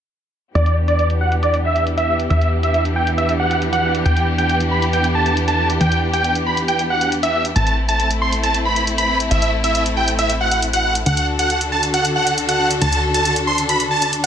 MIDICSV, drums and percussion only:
0, 0, Header, 1, 2, 480
1, 0, Start_track
1, 0, Key_signature, 1, "minor"
1, 0, Tempo, 437956
1, 605, Time_signature, 4, 2, 24, 8
1, 15632, End_track
2, 0, Start_track
2, 0, Title_t, "Drums"
2, 606, Note_on_c, 9, 42, 62
2, 715, Note_off_c, 9, 42, 0
2, 725, Note_on_c, 9, 42, 62
2, 834, Note_off_c, 9, 42, 0
2, 965, Note_on_c, 9, 42, 65
2, 1074, Note_off_c, 9, 42, 0
2, 1085, Note_on_c, 9, 42, 60
2, 1194, Note_off_c, 9, 42, 0
2, 1205, Note_on_c, 9, 42, 61
2, 1315, Note_off_c, 9, 42, 0
2, 1445, Note_on_c, 9, 42, 66
2, 1554, Note_off_c, 9, 42, 0
2, 1565, Note_on_c, 9, 42, 63
2, 1675, Note_off_c, 9, 42, 0
2, 1685, Note_on_c, 9, 42, 61
2, 1794, Note_off_c, 9, 42, 0
2, 1925, Note_on_c, 9, 42, 59
2, 2035, Note_off_c, 9, 42, 0
2, 2046, Note_on_c, 9, 42, 63
2, 2156, Note_off_c, 9, 42, 0
2, 2165, Note_on_c, 9, 42, 66
2, 2275, Note_off_c, 9, 42, 0
2, 2406, Note_on_c, 9, 42, 62
2, 2516, Note_off_c, 9, 42, 0
2, 2526, Note_on_c, 9, 42, 62
2, 2635, Note_off_c, 9, 42, 0
2, 2646, Note_on_c, 9, 42, 60
2, 2756, Note_off_c, 9, 42, 0
2, 2885, Note_on_c, 9, 42, 65
2, 2995, Note_off_c, 9, 42, 0
2, 3006, Note_on_c, 9, 42, 58
2, 3115, Note_off_c, 9, 42, 0
2, 3126, Note_on_c, 9, 42, 63
2, 3235, Note_off_c, 9, 42, 0
2, 3365, Note_on_c, 9, 42, 62
2, 3475, Note_off_c, 9, 42, 0
2, 3486, Note_on_c, 9, 42, 60
2, 3595, Note_off_c, 9, 42, 0
2, 3605, Note_on_c, 9, 42, 59
2, 3715, Note_off_c, 9, 42, 0
2, 3845, Note_on_c, 9, 42, 58
2, 3955, Note_off_c, 9, 42, 0
2, 3965, Note_on_c, 9, 42, 61
2, 4075, Note_off_c, 9, 42, 0
2, 4086, Note_on_c, 9, 42, 64
2, 4195, Note_off_c, 9, 42, 0
2, 4325, Note_on_c, 9, 42, 63
2, 4435, Note_off_c, 9, 42, 0
2, 4445, Note_on_c, 9, 42, 59
2, 4555, Note_off_c, 9, 42, 0
2, 4566, Note_on_c, 9, 42, 59
2, 4675, Note_off_c, 9, 42, 0
2, 4806, Note_on_c, 9, 42, 61
2, 4915, Note_off_c, 9, 42, 0
2, 4926, Note_on_c, 9, 42, 59
2, 5036, Note_off_c, 9, 42, 0
2, 5046, Note_on_c, 9, 42, 61
2, 5156, Note_off_c, 9, 42, 0
2, 5286, Note_on_c, 9, 42, 59
2, 5396, Note_off_c, 9, 42, 0
2, 5406, Note_on_c, 9, 42, 58
2, 5515, Note_off_c, 9, 42, 0
2, 5525, Note_on_c, 9, 42, 58
2, 5634, Note_off_c, 9, 42, 0
2, 5764, Note_on_c, 9, 42, 59
2, 5874, Note_off_c, 9, 42, 0
2, 5884, Note_on_c, 9, 42, 61
2, 5994, Note_off_c, 9, 42, 0
2, 6004, Note_on_c, 9, 42, 60
2, 6114, Note_off_c, 9, 42, 0
2, 6244, Note_on_c, 9, 42, 58
2, 6354, Note_off_c, 9, 42, 0
2, 6364, Note_on_c, 9, 42, 60
2, 6474, Note_off_c, 9, 42, 0
2, 6485, Note_on_c, 9, 42, 58
2, 6595, Note_off_c, 9, 42, 0
2, 6724, Note_on_c, 9, 42, 60
2, 6834, Note_off_c, 9, 42, 0
2, 6843, Note_on_c, 9, 42, 58
2, 6953, Note_off_c, 9, 42, 0
2, 6964, Note_on_c, 9, 42, 57
2, 7073, Note_off_c, 9, 42, 0
2, 7203, Note_on_c, 9, 42, 58
2, 7313, Note_off_c, 9, 42, 0
2, 7324, Note_on_c, 9, 42, 59
2, 7434, Note_off_c, 9, 42, 0
2, 7444, Note_on_c, 9, 42, 54
2, 7554, Note_off_c, 9, 42, 0
2, 7684, Note_on_c, 9, 42, 56
2, 7794, Note_off_c, 9, 42, 0
2, 7804, Note_on_c, 9, 42, 61
2, 7914, Note_off_c, 9, 42, 0
2, 7924, Note_on_c, 9, 42, 58
2, 8034, Note_off_c, 9, 42, 0
2, 8164, Note_on_c, 9, 42, 59
2, 8273, Note_off_c, 9, 42, 0
2, 8284, Note_on_c, 9, 42, 59
2, 8393, Note_off_c, 9, 42, 0
2, 8403, Note_on_c, 9, 42, 59
2, 8513, Note_off_c, 9, 42, 0
2, 8643, Note_on_c, 9, 42, 62
2, 8753, Note_off_c, 9, 42, 0
2, 8764, Note_on_c, 9, 42, 59
2, 8873, Note_off_c, 9, 42, 0
2, 8883, Note_on_c, 9, 42, 58
2, 8993, Note_off_c, 9, 42, 0
2, 9124, Note_on_c, 9, 42, 58
2, 9234, Note_off_c, 9, 42, 0
2, 9244, Note_on_c, 9, 42, 57
2, 9354, Note_off_c, 9, 42, 0
2, 9365, Note_on_c, 9, 42, 56
2, 9474, Note_off_c, 9, 42, 0
2, 9604, Note_on_c, 9, 42, 58
2, 9714, Note_off_c, 9, 42, 0
2, 9724, Note_on_c, 9, 42, 58
2, 9834, Note_off_c, 9, 42, 0
2, 9844, Note_on_c, 9, 42, 58
2, 9954, Note_off_c, 9, 42, 0
2, 10084, Note_on_c, 9, 42, 58
2, 10194, Note_off_c, 9, 42, 0
2, 10205, Note_on_c, 9, 42, 62
2, 10314, Note_off_c, 9, 42, 0
2, 10324, Note_on_c, 9, 42, 61
2, 10434, Note_off_c, 9, 42, 0
2, 10565, Note_on_c, 9, 42, 59
2, 10674, Note_off_c, 9, 42, 0
2, 10685, Note_on_c, 9, 42, 61
2, 10795, Note_off_c, 9, 42, 0
2, 10805, Note_on_c, 9, 42, 63
2, 10915, Note_off_c, 9, 42, 0
2, 11044, Note_on_c, 9, 42, 61
2, 11154, Note_off_c, 9, 42, 0
2, 11165, Note_on_c, 9, 42, 59
2, 11274, Note_off_c, 9, 42, 0
2, 11284, Note_on_c, 9, 42, 56
2, 11394, Note_off_c, 9, 42, 0
2, 11524, Note_on_c, 9, 42, 60
2, 11634, Note_off_c, 9, 42, 0
2, 11644, Note_on_c, 9, 42, 61
2, 11754, Note_off_c, 9, 42, 0
2, 11765, Note_on_c, 9, 42, 61
2, 11874, Note_off_c, 9, 42, 0
2, 12005, Note_on_c, 9, 42, 62
2, 12114, Note_off_c, 9, 42, 0
2, 12124, Note_on_c, 9, 42, 63
2, 12234, Note_off_c, 9, 42, 0
2, 12244, Note_on_c, 9, 42, 62
2, 12354, Note_off_c, 9, 42, 0
2, 12484, Note_on_c, 9, 42, 65
2, 12594, Note_off_c, 9, 42, 0
2, 12604, Note_on_c, 9, 42, 60
2, 12713, Note_off_c, 9, 42, 0
2, 12725, Note_on_c, 9, 42, 63
2, 12834, Note_off_c, 9, 42, 0
2, 12964, Note_on_c, 9, 42, 62
2, 13074, Note_off_c, 9, 42, 0
2, 13084, Note_on_c, 9, 42, 62
2, 13193, Note_off_c, 9, 42, 0
2, 13204, Note_on_c, 9, 42, 61
2, 13314, Note_off_c, 9, 42, 0
2, 13445, Note_on_c, 9, 42, 63
2, 13554, Note_off_c, 9, 42, 0
2, 13565, Note_on_c, 9, 42, 64
2, 13675, Note_off_c, 9, 42, 0
2, 13686, Note_on_c, 9, 42, 62
2, 13795, Note_off_c, 9, 42, 0
2, 13925, Note_on_c, 9, 42, 64
2, 14035, Note_off_c, 9, 42, 0
2, 14046, Note_on_c, 9, 42, 66
2, 14155, Note_off_c, 9, 42, 0
2, 14166, Note_on_c, 9, 42, 65
2, 14275, Note_off_c, 9, 42, 0
2, 14406, Note_on_c, 9, 42, 67
2, 14516, Note_off_c, 9, 42, 0
2, 14526, Note_on_c, 9, 42, 64
2, 14635, Note_off_c, 9, 42, 0
2, 14645, Note_on_c, 9, 42, 65
2, 14754, Note_off_c, 9, 42, 0
2, 14884, Note_on_c, 9, 42, 67
2, 14994, Note_off_c, 9, 42, 0
2, 15005, Note_on_c, 9, 42, 64
2, 15115, Note_off_c, 9, 42, 0
2, 15125, Note_on_c, 9, 42, 61
2, 15235, Note_off_c, 9, 42, 0
2, 15365, Note_on_c, 9, 42, 65
2, 15475, Note_off_c, 9, 42, 0
2, 15485, Note_on_c, 9, 42, 66
2, 15595, Note_off_c, 9, 42, 0
2, 15632, End_track
0, 0, End_of_file